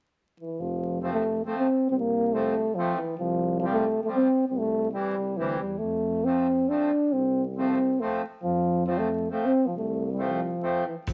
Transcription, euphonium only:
0.40 0.61 E3 medium
0.60 1.01 F3 medium
1.02 1.13 F3 medium
1.14 1.44 A3 medium
1.45 1.57 A3 medium
1.58 1.88 C4 medium
1.90 1.95 C4 medium
1.99 2.34 A#3 medium
2.32 2.76 A3 medium
2.75 2.95 F3 medium
2.96 3.17 E3 medium
3.18 3.59 F3 medium
3.60 3.66 F3 medium
3.73 4.03 A3 medium
4.04 4.10 A3 medium
4.16 4.47 C4 medium
4.48 4.60 C4 medium
4.59 4.91 A3 medium
4.92 5.38 G3 medium
5.37 5.59 E3 medium
5.59 5.80 G3 medium
5.78 6.26 A3 medium
6.24 6.70 C4 medium
6.69 7.14 D4 medium
7.12 7.43 C4 medium
7.57 8.02 C4 medium
8.00 8.23 A3 medium
8.43 8.84 F3 medium
8.86 9.00 F3 medium
8.98 9.31 A3 medium
9.32 9.46 A3 medium
9.45 9.68 C4 medium
9.66 9.76 F3 medium
9.77 10.08 A3 medium
10.12 10.20 G3 medium
10.22 10.85 F3 medium
10.86 10.95 E3 medium
11.07 11.13 F3 medium

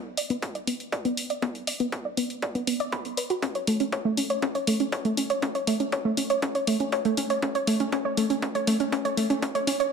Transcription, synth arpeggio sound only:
0.17 0.23 D5 medium
0.30 0.39 B3 loud
0.55 0.60 D5 medium
0.67 0.76 B3 medium
0.92 0.98 D5 medium
1.05 1.14 B3 loud
1.30 1.35 D5 medium
1.42 1.51 B3 loud
1.67 1.73 D5 medium
1.80 1.89 B3 loud
2.05 2.10 D5 medium
2.17 2.26 B3 loud
2.42 2.48 D5 medium
2.55 2.64 B3 loud
2.67 2.76 B3 loud
2.80 2.92 D5 loud
2.92 3.04 B5 medium
3.17 3.26 B4 medium
3.30 3.35 F#4 medium
3.42 3.48 C#4 medium
3.55 3.60 C#5 medium
3.67 3.77 A3 medium
3.80 3.85 C#4 medium
3.92 3.98 C#5 medium
4.05 4.14 A3 medium
4.17 4.23 C#4 medium
4.30 4.35 C#5 medium
4.42 4.48 C#4 medium
4.55 4.60 C#5 medium
4.67 4.76 A3 medium
4.80 4.85 C#4 medium
4.92 4.98 C#5 medium
5.05 5.14 A3 medium
5.17 5.23 C#4 medium
5.30 5.35 C#5 medium
5.42 5.48 C#4 medium
5.55 5.60 C#5 medium
5.67 5.76 A3 loud
5.80 5.85 C#4 medium
5.92 5.98 C#5 medium
6.05 6.14 A3 loud
6.17 6.23 C#4 medium
6.30 6.35 C#5 medium
6.42 6.48 C#4 medium
6.55 6.60 C#5 medium
6.67 6.77 A3 loud
6.80 6.85 C#4 medium
6.92 6.98 C#5 medium
7.05 7.14 A3 loud
7.17 7.23 C#4 medium
7.30 7.35 C#5 medium
7.42 7.48 C#4 medium
7.55 7.60 C#5 medium
7.67 7.76 A3 loud
7.80 7.85 C#4 medium
7.92 7.98 C#4 medium
8.05 8.10 C#5 medium
8.17 8.26 A3 loud
8.30 8.35 C#4 medium
8.42 8.48 C#4 medium
8.55 8.60 C#5 medium
8.67 8.76 A3 loud
8.80 8.85 C#4 medium
8.92 8.98 C#4 medium
9.05 9.10 C#5 medium
9.17 9.26 A3 loud
9.30 9.35 C#4 medium
9.42 9.48 C#4 medium
9.55 9.60 C#5 medium
9.67 9.73 C#4 medium
9.80 9.85 C#5 medium

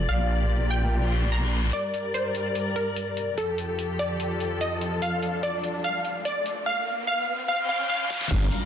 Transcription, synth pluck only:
0.09 0.63 F5 medium
0.70 1.24 G5 medium
1.32 1.67 A#5 medium
1.73 2.08 D5 loud
2.14 2.68 C5 medium
2.76 3.30 A#4 medium
3.38 3.91 A4 medium
3.99 4.53 D5 medium
4.61 4.96 D#5 medium
5.02 5.37 F5 medium
5.43 5.83 D5 medium
5.84 6.19 F5 loud
6.25 6.65 D5 medium
6.66 7.01 F5 loud
7.07 7.42 F5 loud
7.48 7.67 F5 loud
7.69 7.88 F5 loud
7.90 8.09 F5 loud
8.10 8.29 F5 loud

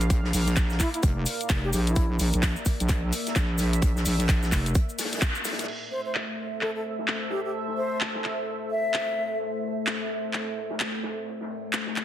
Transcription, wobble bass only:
0.10 0.32 A#1 medium
0.33 0.55 A#1 medium
0.57 0.79 A#1 loud
1.03 1.25 F1 loud
1.50 1.72 F1 loud
1.73 1.95 A#1 medium
1.96 2.18 A#1 loud
2.20 2.31 A#1 loud
2.34 2.55 A#1 loud
2.80 3.11 A#1 medium
3.36 3.81 A#1 loud
3.82 4.04 A#1 loud
4.06 4.27 A#1 medium
4.29 4.51 A#1 loud
4.52 4.74 F1 loud

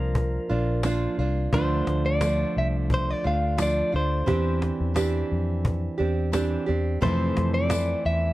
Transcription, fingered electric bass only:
0.00 0.37 C2 medium
0.50 1.06 A#1 medium
1.18 1.46 C2 loud
1.53 1.81 D2 loud
1.87 2.43 D2 loud
2.57 3.13 C2 medium
3.25 3.81 D2 medium
3.94 4.22 D2 medium
4.28 4.70 E2 medium
4.80 5.22 E2 loud
5.32 5.88 F2 medium
6.00 6.56 E2 medium
6.69 6.97 E2 medium
7.02 7.30 F2 loud
7.37 7.93 F2 loud
8.05 8.33 E2 medium

